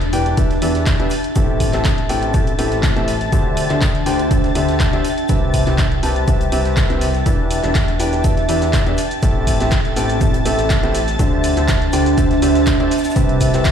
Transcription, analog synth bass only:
0.00 0.11 E1 loud
0.13 0.35 E1 medium
0.38 0.60 E1 loud
0.62 0.97 E2 medium
1.00 1.08 E1 loud
1.36 1.71 A1 medium
1.74 2.07 A1 medium
2.10 2.32 A1 medium
2.34 2.56 A1 loud
2.59 2.94 A1 medium
2.97 3.30 A1 medium
3.32 3.68 D2 loud
3.70 4.04 D2 medium
4.06 4.29 D2 medium
4.31 4.53 D2 medium
4.56 4.91 D2 medium
4.93 5.01 D2 loud
5.29 5.64 C2 loud
5.67 6.01 C2 loud
6.03 6.25 C2 medium
6.28 6.50 C2 loud
6.52 6.87 C2 medium
6.90 7.24 C2 loud
7.64 7.98 E1 loud
8.00 8.22 E1 loud
8.24 8.47 E1 medium
8.49 8.84 E2 medium
8.87 8.95 E2 medium
9.23 9.58 A1 medium
9.60 9.94 A1 loud
9.96 10.19 A1 loud
10.21 10.43 A1 medium
10.46 10.81 A1 loud
10.83 11.17 A1 loud
11.19 11.55 D2 medium
11.57 11.91 D2 loud
11.93 12.15 D2 loud
12.18 12.40 D2 loud
12.42 12.78 D2 loud
12.80 12.88 D2 loud
13.16 13.51 C2 loud
13.54 13.72 C2 medium

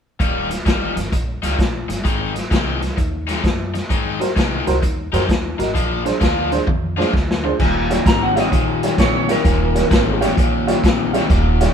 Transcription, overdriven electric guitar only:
0.20 0.50 D#3 medium
0.20 0.50 G3 medium
0.20 0.50 A#3 medium
0.20 0.49 D#4 medium
0.50 muted overdriven electric guitar stroke soft
0.66 0.96 D#3 medium
0.66 0.96 G3 medium
0.66 0.95 A#3 medium
0.66 0.95 D#4 medium
0.96 muted overdriven electric guitar stroke soft
1.12 muted overdriven electric guitar stroke soft
1.42 1.57 D#3 medium
1.42 1.57 G3 medium
1.42 1.57 A#3 medium
1.42 1.58 D#4 medium
1.58 muted overdriven electric guitar stroke soft
1.88 muted overdriven electric guitar stroke soft
2.04 2.34 D#3 medium
2.04 2.34 G#3 medium
2.04 2.34 C4 medium
2.04 2.34 D#4 medium
2.35 muted overdriven electric guitar stroke soft
2.50 2.81 D#3 medium
2.50 2.80 G#3 medium
2.50 2.80 C4 medium
2.50 2.80 D#4 medium
2.81 muted overdriven electric guitar stroke soft
2.97 muted overdriven electric guitar stroke soft
3.27 3.42 D#3 medium
3.27 3.42 G#3 medium
3.27 3.42 C4 medium
3.27 3.43 D#4 medium
3.43 muted overdriven electric guitar stroke soft
3.74 muted overdriven electric guitar stroke soft
3.90 4.20 D#3 medium
3.90 4.20 G#3 medium
3.90 4.19 C4 medium
3.90 4.19 D#4 medium
4.21 muted overdriven electric guitar stroke soft
4.36 4.66 D#3 medium
4.36 4.65 G#3 medium
4.36 4.65 C4 medium
4.36 4.65 D#4 medium
4.66 muted overdriven electric guitar stroke soft
4.82 muted overdriven electric guitar stroke soft
5.12 5.27 D#3 medium
5.12 5.27 G#3 medium
5.12 5.28 C4 medium
5.12 5.28 D#4 medium
5.28 muted overdriven electric guitar stroke soft
5.59 muted overdriven electric guitar stroke soft
5.74 6.04 F3 medium
5.74 6.04 A#3 medium
5.74 6.04 D4 medium
5.74 6.04 F4 medium
6.05 muted overdriven electric guitar stroke soft
6.20 6.51 F3 medium
6.20 6.51 A#3 medium
6.20 6.50 D4 medium
6.20 6.50 F4 medium
6.51 muted overdriven electric guitar stroke soft
6.67 muted overdriven electric guitar stroke soft
6.97 7.12 F3 medium
6.97 7.12 A#3 medium
6.97 7.13 D4 medium
6.97 7.13 F4 medium
7.13 muted overdriven electric guitar stroke soft
7.44 muted overdriven electric guitar stroke soft
7.60 8.03 D#2 medium
7.60 8.03 A#2 medium
8.06 8.33 D#2 medium
8.06 8.33 C3 medium
8.36 8.50 D#2 medium
8.36 8.51 C3 medium
8.52 8.95 D#2 medium
8.52 8.95 A#2 medium
8.98 9.26 D#2 medium
8.98 9.26 C3 medium
9.28 9.43 D#2 medium
9.28 9.43 C3 medium
9.44 9.87 D#2 medium
9.44 9.88 A#2 medium
9.90 10.18 D#2 medium
9.90 10.18 C3 medium
10.21 10.35 D#2 medium
10.21 10.36 C3 medium
10.37 10.80 D#2 medium
10.37 10.80 A#2 medium
10.83 11.11 D#2 medium
10.83 11.11 C3 medium
11.14 11.28 D#2 medium
11.14 11.28 C3 medium
11.29 11.73 D#2 medium
11.29 11.73 A#2 medium

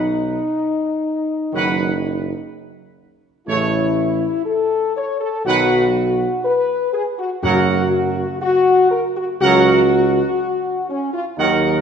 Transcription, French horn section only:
0.00 2.51 D#4 medium
3.48 4.42 E4 medium
4.46 4.96 A4 loud
4.96 5.19 C#5 medium
5.20 5.44 A4 medium
5.46 6.40 F#4 loud
6.44 6.90 B4 medium
6.93 7.04 G#4 loud
7.18 7.29 F#4 medium
7.43 8.38 F#4 loud
8.41 8.88 F#4 loud
8.91 9.03 A#4 medium
9.16 9.27 F#4 medium
9.40 10.85 F#4 loud
10.89 11.12 C#4 medium
11.13 11.24 F4 loud
11.37 11.81 D#4 medium

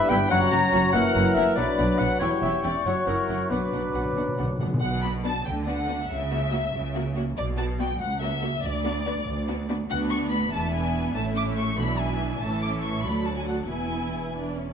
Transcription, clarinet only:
0.00 0.11 E5 loud
0.09 0.30 G5 loud
0.31 0.40 F#5 loud
0.52 0.92 A#5 loud
0.93 1.36 F#5 loud
1.35 1.55 E5 medium
1.55 2.00 D5 medium
1.99 2.19 F#5 loud
2.20 2.30 C#5 medium
2.42 2.52 E5 medium
2.64 2.87 D5 medium
2.85 3.09 C#5 medium
3.08 3.53 A#4 medium
3.51 4.17 B4 medium

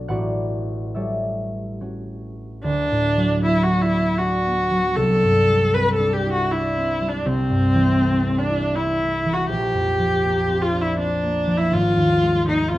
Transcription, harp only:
0.00 0.14 B1 medium
0.00 2.38 A3 soft
0.00 0.13 D4 soft
0.00 0.95 A4 medium
0.00 0.93 E5 medium
0.00 0.14 G#5 medium
0.00 3.15 A5 medium
0.00 1.61 B5 loud
0.08 2.67 A1 soft
0.08 1.80 F#4 medium
0.08 4.00 B4 medium
0.08 4.01 D5 medium
0.08 1.54 F#5 medium
0.95 2.67 G3 soft
0.95 4.85 A4 soft
0.95 2.67 C#5 soft
0.95 2.67 E5 medium
1.81 2.67 C#4 soft
1.81 3.92 F#4 soft
2.64 5.00 D2 soft
2.91 5.00 A2 soft
3.17 4.70 F#3 soft
3.41 4.44 B3 soft
3.67 4.17 D4 soft
3.93 5.00 F#4 soft
4.19 5.98 D4 soft
4.45 5.00 B3 soft
4.71 5.00 F#3 soft
4.96 7.24 C2 medium
5.23 7.28 G2 soft
5.49 7.00 G3 soft
5.75 6.75 C4 soft
6.00 6.51 D4 soft
6.26 8.49 E4 soft
6.52 7.29 D4 soft
6.77 8.24 C4 soft
7.01 10.91 G3 soft
7.25 9.52 C2 medium
7.50 9.52 G2 soft
7.75 9.24 E3 soft
8.00 9.00 A3 soft
8.25 8.74 C4 soft
8.50 9.52 E4 soft
8.75 10.47 C4 soft
9.01 9.53 A3 soft
9.26 9.53 E3 soft
9.49 11.74 A#1 medium
9.74 11.74 F2 soft
9.99 11.45 F3 soft
10.23 11.22 A#3 soft
10.48 10.96 C4 soft
10.72 11.75 D4 soft
10.97 12.71 C4 soft
11.23 12.46 A#3 soft
11.47 12.78 F3 soft
11.71 12.78 G#1 medium
11.96 12.78 D#2 soft
12.22 12.78 G#3 soft
12.47 12.78 A#3 soft
12.72 12.78 C4 soft

